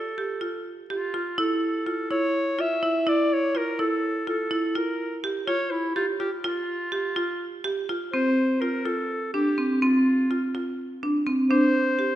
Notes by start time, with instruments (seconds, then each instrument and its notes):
Already playing: marimba F4, clarinet A4
0.18 marimba G4
0.41 marimba F4
0.90 clarinet F4, marimba G4
1.14 marimba F4
1.38 marimba E4, clarinet A4
1.86 marimba F4
2.11 marimba E4, clarinet C#5
2.58 marimba F4, clarinet E5
2.83 marimba E4
3.07 marimba E4, clarinet D5
3.33 clarinet C#5
3.55 marimba F4, clarinet A#4
3.79 marimba E4, clarinet A4
4.27 marimba F4, clarinet A4
4.51 marimba E4
4.75 marimba F4, clarinet A#4
5.24 marimba G4
5.47 marimba F4, clarinet C#5
5.71 clarinet E4
5.96 clarinet F4, marimba G4
6.20 marimba F4, clarinet G4
6.44 clarinet F4, marimba F4
6.92 marimba G4
7.16 marimba F4
7.64 marimba G4
7.89 marimba F4
8.13 marimba C4, clarinet C5
8.61 marimba F4, clarinet A#4
8.85 marimba F4, clarinet A4
9.34 marimba D4, clarinet G4
9.58 marimba C4
9.82 marimba C4, clarinet F4
10.31 marimba F4
10.55 marimba F4
11.03 marimba D4
11.27 marimba C4
11.50 marimba D4, clarinet C5
11.99 marimba G4